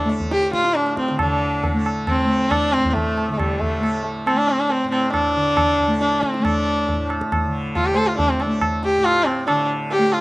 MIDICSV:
0, 0, Header, 1, 4, 480
1, 0, Start_track
1, 0, Tempo, 440205
1, 1303, Time_signature, 3, 2, 24, 8
1, 5136, Tempo, 432900
1, 11231, End_track
2, 0, Start_track
2, 0, Title_t, "Sarangi"
2, 0, Program_c, 0, 110
2, 348, Note_on_c, 0, 67, 102
2, 568, Note_off_c, 0, 67, 0
2, 579, Note_on_c, 0, 65, 105
2, 825, Note_on_c, 0, 62, 93
2, 841, Note_off_c, 0, 65, 0
2, 1064, Note_off_c, 0, 62, 0
2, 1072, Note_on_c, 0, 60, 78
2, 1291, Note_off_c, 0, 60, 0
2, 1324, Note_on_c, 0, 62, 79
2, 1991, Note_off_c, 0, 62, 0
2, 2273, Note_on_c, 0, 60, 95
2, 2730, Note_on_c, 0, 62, 108
2, 2747, Note_off_c, 0, 60, 0
2, 2975, Note_on_c, 0, 60, 103
2, 2991, Note_off_c, 0, 62, 0
2, 3163, Note_off_c, 0, 60, 0
2, 3163, Note_on_c, 0, 60, 61
2, 3203, Note_on_c, 0, 57, 88
2, 3220, Note_off_c, 0, 60, 0
2, 3624, Note_off_c, 0, 57, 0
2, 3631, Note_on_c, 0, 57, 55
2, 3683, Note_on_c, 0, 55, 74
2, 3699, Note_off_c, 0, 57, 0
2, 3924, Note_on_c, 0, 57, 80
2, 3941, Note_off_c, 0, 55, 0
2, 4411, Note_off_c, 0, 57, 0
2, 4650, Note_on_c, 0, 60, 91
2, 4768, Note_on_c, 0, 62, 100
2, 4784, Note_off_c, 0, 60, 0
2, 4888, Note_on_c, 0, 60, 96
2, 4905, Note_off_c, 0, 62, 0
2, 5012, Note_on_c, 0, 62, 87
2, 5028, Note_off_c, 0, 60, 0
2, 5131, Note_on_c, 0, 60, 94
2, 5147, Note_off_c, 0, 62, 0
2, 5349, Note_off_c, 0, 60, 0
2, 5355, Note_on_c, 0, 60, 89
2, 5590, Note_off_c, 0, 60, 0
2, 5596, Note_on_c, 0, 62, 102
2, 6529, Note_off_c, 0, 62, 0
2, 6574, Note_on_c, 0, 62, 91
2, 6804, Note_on_c, 0, 60, 78
2, 6821, Note_off_c, 0, 62, 0
2, 7042, Note_on_c, 0, 62, 93
2, 7058, Note_off_c, 0, 60, 0
2, 7776, Note_off_c, 0, 62, 0
2, 8513, Note_on_c, 0, 65, 94
2, 8630, Note_on_c, 0, 67, 90
2, 8646, Note_off_c, 0, 65, 0
2, 8717, Note_on_c, 0, 72, 74
2, 8733, Note_off_c, 0, 67, 0
2, 8750, Note_on_c, 0, 69, 95
2, 8767, Note_off_c, 0, 72, 0
2, 8861, Note_on_c, 0, 65, 85
2, 8878, Note_off_c, 0, 69, 0
2, 8975, Note_off_c, 0, 65, 0
2, 8982, Note_on_c, 0, 62, 92
2, 9104, Note_on_c, 0, 60, 81
2, 9121, Note_off_c, 0, 62, 0
2, 9241, Note_on_c, 0, 62, 76
2, 9258, Note_off_c, 0, 60, 0
2, 9354, Note_off_c, 0, 62, 0
2, 9718, Note_on_c, 0, 67, 98
2, 9940, Note_on_c, 0, 65, 113
2, 9957, Note_off_c, 0, 67, 0
2, 10186, Note_on_c, 0, 60, 93
2, 10203, Note_off_c, 0, 65, 0
2, 10402, Note_off_c, 0, 60, 0
2, 10408, Note_on_c, 0, 62, 80
2, 10636, Note_off_c, 0, 62, 0
2, 10901, Note_on_c, 0, 67, 101
2, 11139, Note_on_c, 0, 65, 88
2, 11156, Note_off_c, 0, 67, 0
2, 11231, Note_off_c, 0, 65, 0
2, 11231, End_track
3, 0, Start_track
3, 0, Title_t, "Tanpura"
3, 0, Program_c, 1, 104
3, 0, Note_on_c, 1, 45, 64
3, 0, Note_on_c, 1, 50, 65
3, 0, Note_on_c, 1, 57, 60
3, 56, Note_off_c, 1, 57, 0
3, 56, Note_on_c, 1, 57, 60
3, 621, Note_off_c, 1, 45, 0
3, 626, Note_on_c, 1, 45, 55
3, 1189, Note_off_c, 1, 50, 0
3, 1193, Note_on_c, 1, 50, 60
3, 1307, Note_off_c, 1, 50, 0
3, 1307, Note_on_c, 1, 50, 64
3, 1890, Note_off_c, 1, 57, 0
3, 1890, Note_on_c, 1, 57, 57
3, 2451, Note_off_c, 1, 57, 0
3, 2451, Note_on_c, 1, 57, 60
3, 3014, Note_off_c, 1, 45, 0
3, 3018, Note_on_c, 1, 45, 61
3, 3577, Note_off_c, 1, 50, 0
3, 3577, Note_on_c, 1, 50, 54
3, 4143, Note_off_c, 1, 57, 0
3, 4143, Note_on_c, 1, 57, 65
3, 4715, Note_off_c, 1, 57, 0
3, 4715, Note_on_c, 1, 57, 57
3, 5275, Note_off_c, 1, 45, 0
3, 5280, Note_on_c, 1, 45, 62
3, 5848, Note_off_c, 1, 50, 0
3, 5853, Note_on_c, 1, 50, 56
3, 6427, Note_off_c, 1, 57, 0
3, 6427, Note_on_c, 1, 57, 59
3, 7007, Note_off_c, 1, 57, 0
3, 7007, Note_on_c, 1, 57, 54
3, 7583, Note_off_c, 1, 45, 0
3, 7587, Note_on_c, 1, 45, 62
3, 8163, Note_off_c, 1, 50, 0
3, 8167, Note_on_c, 1, 50, 57
3, 8725, Note_off_c, 1, 57, 0
3, 8725, Note_on_c, 1, 57, 57
3, 9292, Note_off_c, 1, 57, 0
3, 9292, Note_on_c, 1, 57, 60
3, 9858, Note_off_c, 1, 45, 0
3, 9862, Note_on_c, 1, 45, 64
3, 10425, Note_off_c, 1, 50, 0
3, 10430, Note_on_c, 1, 50, 63
3, 10988, Note_off_c, 1, 57, 0
3, 10988, Note_on_c, 1, 57, 60
3, 11231, Note_off_c, 1, 45, 0
3, 11231, Note_off_c, 1, 50, 0
3, 11231, Note_off_c, 1, 57, 0
3, 11231, End_track
4, 0, Start_track
4, 0, Title_t, "Tabla"
4, 103, Note_on_c, 9, 62, 63
4, 212, Note_off_c, 9, 62, 0
4, 221, Note_on_c, 9, 64, 57
4, 330, Note_off_c, 9, 64, 0
4, 343, Note_on_c, 9, 62, 88
4, 452, Note_off_c, 9, 62, 0
4, 463, Note_on_c, 9, 62, 60
4, 572, Note_off_c, 9, 62, 0
4, 582, Note_on_c, 9, 37, 65
4, 692, Note_off_c, 9, 37, 0
4, 702, Note_on_c, 9, 62, 64
4, 811, Note_off_c, 9, 62, 0
4, 817, Note_on_c, 9, 62, 80
4, 927, Note_off_c, 9, 62, 0
4, 942, Note_on_c, 9, 62, 54
4, 1051, Note_off_c, 9, 62, 0
4, 1060, Note_on_c, 9, 37, 61
4, 1169, Note_off_c, 9, 37, 0
4, 1182, Note_on_c, 9, 62, 57
4, 1291, Note_off_c, 9, 62, 0
4, 1297, Note_on_c, 9, 60, 80
4, 1297, Note_on_c, 9, 64, 84
4, 1407, Note_off_c, 9, 60, 0
4, 1407, Note_off_c, 9, 64, 0
4, 1784, Note_on_c, 9, 63, 82
4, 1784, Note_on_c, 9, 64, 70
4, 1893, Note_off_c, 9, 63, 0
4, 1893, Note_off_c, 9, 64, 0
4, 2028, Note_on_c, 9, 60, 62
4, 2137, Note_off_c, 9, 60, 0
4, 2260, Note_on_c, 9, 60, 73
4, 2260, Note_on_c, 9, 64, 66
4, 2369, Note_off_c, 9, 60, 0
4, 2369, Note_off_c, 9, 64, 0
4, 2738, Note_on_c, 9, 60, 75
4, 2738, Note_on_c, 9, 64, 65
4, 2847, Note_off_c, 9, 60, 0
4, 2847, Note_off_c, 9, 64, 0
4, 2981, Note_on_c, 9, 62, 64
4, 3090, Note_off_c, 9, 62, 0
4, 3106, Note_on_c, 9, 64, 58
4, 3215, Note_off_c, 9, 64, 0
4, 3223, Note_on_c, 9, 63, 75
4, 3223, Note_on_c, 9, 64, 77
4, 3332, Note_off_c, 9, 63, 0
4, 3332, Note_off_c, 9, 64, 0
4, 3462, Note_on_c, 9, 60, 56
4, 3571, Note_off_c, 9, 60, 0
4, 3702, Note_on_c, 9, 60, 75
4, 3702, Note_on_c, 9, 64, 63
4, 3811, Note_off_c, 9, 60, 0
4, 3811, Note_off_c, 9, 64, 0
4, 3946, Note_on_c, 9, 64, 51
4, 4055, Note_off_c, 9, 64, 0
4, 4180, Note_on_c, 9, 60, 67
4, 4289, Note_off_c, 9, 60, 0
4, 4657, Note_on_c, 9, 60, 86
4, 4766, Note_off_c, 9, 60, 0
4, 5124, Note_on_c, 9, 63, 75
4, 5234, Note_off_c, 9, 63, 0
4, 5372, Note_on_c, 9, 60, 59
4, 5483, Note_off_c, 9, 60, 0
4, 5610, Note_on_c, 9, 60, 67
4, 5610, Note_on_c, 9, 64, 65
4, 5721, Note_off_c, 9, 60, 0
4, 5721, Note_off_c, 9, 64, 0
4, 6088, Note_on_c, 9, 60, 83
4, 6088, Note_on_c, 9, 64, 73
4, 6199, Note_off_c, 9, 60, 0
4, 6199, Note_off_c, 9, 64, 0
4, 6341, Note_on_c, 9, 64, 51
4, 6452, Note_off_c, 9, 64, 0
4, 6578, Note_on_c, 9, 62, 75
4, 6689, Note_off_c, 9, 62, 0
4, 6704, Note_on_c, 9, 62, 56
4, 6815, Note_off_c, 9, 62, 0
4, 6819, Note_on_c, 9, 37, 56
4, 6930, Note_off_c, 9, 37, 0
4, 6944, Note_on_c, 9, 62, 52
4, 7055, Note_off_c, 9, 62, 0
4, 7063, Note_on_c, 9, 60, 85
4, 7063, Note_on_c, 9, 64, 84
4, 7174, Note_off_c, 9, 60, 0
4, 7174, Note_off_c, 9, 64, 0
4, 7548, Note_on_c, 9, 63, 75
4, 7548, Note_on_c, 9, 64, 69
4, 7659, Note_off_c, 9, 63, 0
4, 7659, Note_off_c, 9, 64, 0
4, 7787, Note_on_c, 9, 60, 59
4, 7898, Note_off_c, 9, 60, 0
4, 7911, Note_on_c, 9, 37, 60
4, 8022, Note_off_c, 9, 37, 0
4, 8033, Note_on_c, 9, 60, 79
4, 8033, Note_on_c, 9, 64, 70
4, 8144, Note_off_c, 9, 60, 0
4, 8144, Note_off_c, 9, 64, 0
4, 8511, Note_on_c, 9, 60, 65
4, 8511, Note_on_c, 9, 64, 61
4, 8622, Note_off_c, 9, 60, 0
4, 8622, Note_off_c, 9, 64, 0
4, 8991, Note_on_c, 9, 63, 76
4, 8991, Note_on_c, 9, 64, 73
4, 9102, Note_off_c, 9, 63, 0
4, 9102, Note_off_c, 9, 64, 0
4, 9225, Note_on_c, 9, 60, 63
4, 9336, Note_off_c, 9, 60, 0
4, 9465, Note_on_c, 9, 60, 80
4, 9465, Note_on_c, 9, 64, 72
4, 9576, Note_off_c, 9, 60, 0
4, 9576, Note_off_c, 9, 64, 0
4, 9704, Note_on_c, 9, 62, 60
4, 9814, Note_off_c, 9, 62, 0
4, 9938, Note_on_c, 9, 60, 64
4, 10049, Note_off_c, 9, 60, 0
4, 10179, Note_on_c, 9, 60, 61
4, 10290, Note_off_c, 9, 60, 0
4, 10421, Note_on_c, 9, 60, 83
4, 10532, Note_off_c, 9, 60, 0
4, 10897, Note_on_c, 9, 63, 72
4, 11008, Note_off_c, 9, 63, 0
4, 11134, Note_on_c, 9, 60, 58
4, 11231, Note_off_c, 9, 60, 0
4, 11231, End_track
0, 0, End_of_file